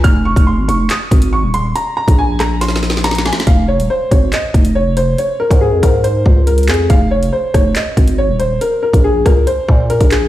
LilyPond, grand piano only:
\new Staff \with { instrumentName = "Grand piano" } { \time 4/4 \key f \minor \tempo 4 = 140 f'''8 des'''8 c'''8 des'''8 ees'''4 des'''8 c'''8 | bes''8 bes''8 aes''8 bes''8 c'''4 bes''8 aes''8 | f''8 des''8 c''8 des''8 ees''4 des''8 c''8 | des''8 bes'8 aes'8 bes'8 c''4 bes'8 aes'8 |
f''8 des''8 c''8 des''8 ees''4 des''8 c''8 | bes'8 bes'8 aes'8 bes'8 c''4 bes'8 aes'8 | }